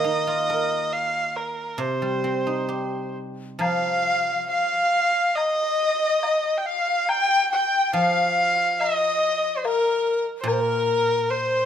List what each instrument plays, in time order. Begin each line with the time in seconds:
Already playing: guzheng D#3 A#3, erhu D#5
0.04 guzheng D#4
0.27 guzheng F4
0.50 guzheng A#4
0.93 erhu F5
1.36 erhu A#4
1.78 guzheng C3, erhu C5
2.02 guzheng G3
2.24 guzheng C4
2.47 guzheng D#4
2.69 guzheng G4
3.59 guzheng F3, dizi F5, erhu F5, high woodblock
4.48 dizi F5, erhu F5
5.35 erhu D#5, dizi D#5, high woodblock
6.23 high woodblock, low woodblock
6.58 erhu G5
6.65 dizi F5, erhu F5
7.09 erhu G5, dizi G5, high woodblock
7.51 dizi G5, erhu G5
7.93 guzheng F3, erhu F5, dizi F5
8.80 dizi D#5, erhu D#5, high woodblock
9.57 erhu C5
9.64 dizi A#4, erhu A#4, high woodblock, low woodblock
10.41 guzheng A#2, erhu C5
10.47 erhu A#4, dizi A#4, high woodblock
10.53 dizi C5
10.61 dizi A#4
11.30 dizi C5, erhu C5